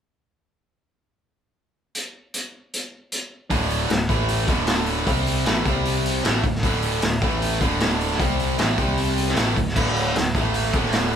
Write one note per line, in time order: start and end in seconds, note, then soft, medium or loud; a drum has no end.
1.95 closed hi-hat medium
2.34 closed hi-hat medium
2.73 closed hi-hat medium
3.12 closed hi-hat medium
3.50 3.87 D1 medium
3.50 3.88 D2 medium
3.50 3.88 A2 medium
3.50 3.90 D3 medium
3.50 kick loud
3.50 open hi-hat medium
3.70 open hi-hat medium
3.88 4.07 D1 medium
3.88 4.05 D2 medium
3.88 4.05 A2 medium
3.88 snare loud
3.88 open hi-hat medium
4.09 4.45 A1 loud
4.09 4.47 A2 medium
4.09 4.47 E3 loud
4.09 4.48 A3 loud
4.09 kick loud
4.09 open hi-hat medium
4.28 open hi-hat medium
4.47 5.03 D1 medium
4.47 5.07 D2 loud
4.47 5.07 A2 loud
4.47 5.08 D3 loud
4.47 kick loud
4.47 open hi-hat medium
4.67 snare loud
4.67 open hi-hat medium
4.86 open hi-hat medium
5.07 5.43 C2 medium
5.07 5.45 C3 medium
5.07 5.46 G3 medium
5.07 5.46 C4 loud
5.07 kick medium
5.07 open hi-hat medium
5.27 open hi-hat medium
5.46 5.64 A1 medium
5.46 5.65 A2 medium
5.46 5.65 E3 loud
5.46 5.66 A3 loud
5.46 snare loud
5.46 open hi-hat medium
5.65 6.20 C2 loud
5.65 6.24 C3 loud
5.65 6.24 G3 loud
5.65 6.24 C4 loud
5.65 kick loud
5.65 open hi-hat medium
5.85 open hi-hat medium
6.05 open hi-hat medium
6.24 6.43 A1 loud
6.24 6.43 A2 medium
6.24 6.43 E3 loud
6.24 6.44 A3 loud
6.24 snare loud
6.24 open hi-hat medium
6.43 6.62 D1 medium
6.43 6.60 D2 medium
6.43 6.60 A2 medium
6.43 kick medium
6.43 open hi-hat medium
6.55 snare soft
6.62 6.99 D1 medium
6.62 7.02 D2 medium
6.62 7.02 A2 medium
6.62 7.02 D3 loud
6.62 kick loud
6.62 open hi-hat medium
6.82 open hi-hat medium
7.02 7.21 D1 medium
7.02 7.22 D2 medium
7.02 7.18 A2 medium
7.02 snare loud
7.02 open hi-hat medium
7.22 7.58 A1 loud
7.22 7.60 A2 loud
7.22 7.61 E3 loud
7.22 7.61 A3 loud
7.22 kick loud
7.22 open hi-hat medium
7.42 open hi-hat medium
7.61 8.16 D1 loud
7.61 8.19 D2 loud
7.61 8.19 A2 loud
7.61 8.19 D3 loud
7.61 kick loud
7.61 open hi-hat medium
7.80 snare loud
7.80 open hi-hat medium
8.01 open hi-hat medium
8.11 snare soft
8.19 8.56 C2 medium
8.19 8.58 C3 medium
8.19 8.58 G3 medium
8.19 8.59 C4 medium
8.19 kick loud
8.19 open hi-hat medium
8.39 open hi-hat medium
8.58 8.77 A1 medium
8.58 8.78 A2 loud
8.58 8.78 E3 loud
8.58 8.78 A3 medium
8.58 snare loud
8.58 open hi-hat medium
8.78 9.33 C2 loud
8.78 9.36 C3 loud
8.78 9.37 G3 loud
8.78 9.37 C4 loud
8.78 kick loud
8.78 open hi-hat medium
8.97 open hi-hat medium
9.17 open hi-hat medium
9.28 snare soft
9.36 9.55 A1 loud
9.36 9.56 A2 medium
9.36 9.56 E3 medium
9.36 9.57 A3 loud
9.36 snare loud
9.36 open hi-hat medium
9.56 9.75 D1 medium
9.56 9.72 D2 medium
9.56 9.73 A2 medium
9.56 kick medium
9.56 open hi-hat medium
9.68 snare soft
9.76 10.12 D1 medium
9.76 10.15 D2 medium
9.76 10.15 A2 loud
9.76 10.16 D3 medium
9.76 kick loud
9.76 crash medium
9.96 open hi-hat medium
10.15 10.33 D1 medium
10.15 10.31 D2 medium
10.15 10.31 A2 medium
10.15 snare loud
10.15 open hi-hat medium
10.35 10.71 A1 loud
10.35 10.73 A2 loud
10.35 10.74 E3 loud
10.35 10.74 A3 loud
10.35 kick medium
10.35 open hi-hat medium
10.54 open hi-hat medium
10.73 11.16 D1 loud
10.73 11.16 D2 loud
10.73 11.16 A2 loud
10.73 11.16 D3 loud
10.73 kick loud
10.73 open hi-hat medium
10.85 snare soft
10.92 snare loud
10.92 open hi-hat medium